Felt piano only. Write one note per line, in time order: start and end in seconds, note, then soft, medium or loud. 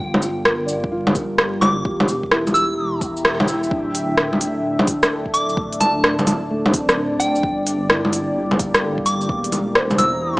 0.45 1.48 A#4 medium
0.65 1.60 D5 medium
0.92 1.95 F4 medium
1.85 2.50 G4 medium
2.31 3.34 E4 medium
2.52 3.46 G4 medium
3.71 4.74 D4 medium
6.50 7.53 A3 medium
6.70 7.64 C4 medium
6.97 7.62 D4 medium
7.90 8.93 E4 medium
8.83 9.48 A4 medium
9.76 10.40 C5 medium